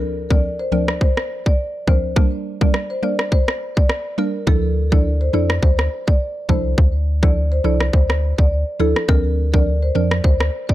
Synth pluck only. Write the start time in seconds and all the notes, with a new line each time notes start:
Already playing: D2 F3 C4 D4 A#4
0.30 D2 F3 C4 D4 A#4
0.72 D2 F3 C4 D4 A#4
1.87 D2 F3 C4 D4 A#4
2.16 G3 A#3 D4 A#4
2.61 G3 A#3 D4 A#4
3.03 G3 A#3 D4 A#4
4.18 G3 A#3 D4 A#4
4.47 F3 D4 E4 A4
4.92 F3 D4 E4 A4
5.33 F3 D4 E4 A4
6.49 F3 D4 E4 A4
7.23 F3 D4 E4 A4
7.64 F3 D4 E4 A4
8.80 F3 D4 E4 A4
9.08 F3 C4 D4 A#4
9.53 F3 C4 D4 A#4
9.95 F3 C4 D4 A#4